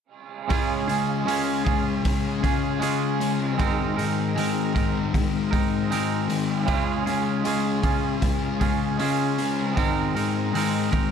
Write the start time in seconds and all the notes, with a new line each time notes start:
0.48 C#3 G#3 C#4 F4 G#4, kick, open hi-hat
0.52 C#4
0.88 G#3 C#4 F4 G#4, open hi-hat
1.26 C#3 G#3 C#4 F4 G#4, open hi-hat
1.65 G#3 C#4 F4 G#4, kick, open hi-hat
2.02 C#3 G#3 C#4, kick, open hi-hat
2.41 G#3 C#4 F4 G#4, kick, open hi-hat
2.46 C#4
2.79 C#3 G#3 C#4 F4 G#4, open hi-hat
3.20 G#3 C#4, open hi-hat
3.57 G#2 D#3 G#3 C4 D#4 A#4, kick, open hi-hat
3.97 D#3 G#3 C4 D#4 A#4, open hi-hat
4.36 G#2 D#3 G#3 C4 D#4 A#4, open hi-hat
4.74 D#3 G#3 C4 D#4 A#4, kick, open hi-hat
5.13 G#2 D#3 G#3, kick, open hi-hat
5.51 G#3 C4 D#4 A#4, kick, open hi-hat
5.55 D#3
5.90 G#2 D#3 G#3 C4 D#4 A#4, open hi-hat
6.28 D#3 G#3, open hi-hat
6.66 C#3 G#3 C#4 F4 G#4, kick, open hi-hat
7.06 G#3 C#4 F4 G#4, open hi-hat
7.44 C#3 G#3 C#4 F4 G#4, open hi-hat
7.82 G#3 C#4 F4 G#4, kick, open hi-hat
8.21 C#3 G#3 C#4, kick, open hi-hat
8.60 G#3 C#4 F4 G#4, kick, open hi-hat
8.98 C#3 G#3 C#4 F4 G#4, open hi-hat
9.03 C#4
9.38 G#3 C#4, open hi-hat
9.75 G#2 D#3 G#3 C4 D#4 A#4, kick, open hi-hat
9.80 G#3
10.15 D#3 G#3 C4 D#4 A#4, open hi-hat
10.53 G#2 D#3 G#3 C4 D#4 A#4, open hi-hat
10.92 D#3 G#3 C4 D#4 A#4, kick, open hi-hat